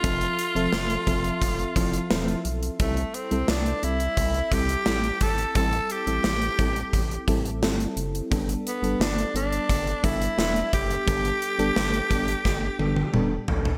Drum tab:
HH |xxxx-xxxxxxx-xxx|xxxx-xxxxxxx-xxx|xxxx-xxxxxxx-xxx|xxxx-xxxxxxx-xxx|
SD |----o-------o---|----o-------o---|----o-------o---|----o-------o---|
T1 |----------------|----------------|----------------|----------------|
T2 |----------------|----------------|----------------|----------------|
FT |----------------|----------------|----------------|----------------|
BD |o-----o-o-o-----|o-------o-o---o-|o-----o-o-o-----|o-------o-o---o-|

HH |xxxx-xxx--------|
SD |----o---o-------|
T1 |----------oo----|
T2 |------------o---|
FT |--------------oo|
BD |o-----o-o-------|